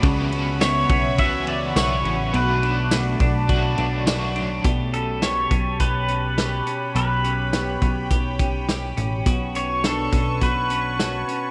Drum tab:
RD |xxxxxxxx|xxxxxxxx|--------|--------|
HH |--------|--------|xxxxxxxx|xxxxxxxx|
TB |--x---x-|--x---x-|--------|--------|
SD |--o---o-|--o---o-|--o---o-|--o---o-|
BD |o--oo---|---oo---|o--oo---|---ooo--|

RD |--------|
HH |xxxxxxxx|
TB |--------|
SD |--o---o-|
BD |o--oo---|